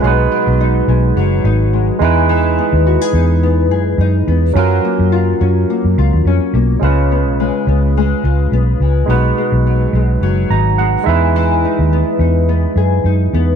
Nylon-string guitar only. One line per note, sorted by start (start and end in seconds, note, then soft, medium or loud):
0.00 0.31 G#3 medium
0.00 0.88 B3 medium
0.00 0.10 F4 medium
0.04 2.08 B2 medium
0.31 1.16 F#3 medium
0.60 1.45 D#4 medium
0.89 1.73 G#3 medium
1.17 2.01 F#3 medium
1.45 2.32 D#4 medium
1.73 2.58 G#3 medium
2.02 2.28 E3 medium
2.29 4.56 E3 medium
2.58 3.42 B3 medium
2.87 3.01 F#4 medium
3.01 3.70 G#4 medium
3.15 4.00 D#4 medium
3.43 4.27 B3 medium
3.71 4.62 G#4 medium
4.01 4.63 D#4 medium
4.28 4.62 B3 medium
4.56 6.82 F#3 medium
4.85 5.69 A#3 medium
5.12 5.98 F4 medium
5.41 6.27 C#4 medium
5.70 6.53 A#3 medium
5.99 7.15 F4 medium
6.27 7.15 C#4 medium
6.55 6.89 A#3 medium
6.83 9.09 C#3 medium
7.12 7.68 B3 medium
7.40 7.97 G#3 medium
7.68 8.53 B3 medium
7.97 8.81 G#3 medium
8.25 9.15 F4 medium
8.53 9.38 B3 medium
8.82 9.38 G#3 soft
9.10 11.13 B2 medium
9.38 9.95 G#3 medium
9.67 10.22 F#3 medium
9.95 10.79 G#3 medium
10.23 11.07 F#3 medium
10.51 11.39 D#4 medium
10.79 11.92 G#3 medium
11.08 11.35 E3 medium
11.36 13.56 E3 medium
11.65 12.19 D#4 medium
11.93 12.48 B3 medium
12.21 13.05 D#4 soft
12.49 13.33 B3 medium
12.77 13.56 G#4 medium
13.06 13.56 D#4 medium
13.34 13.56 B3 medium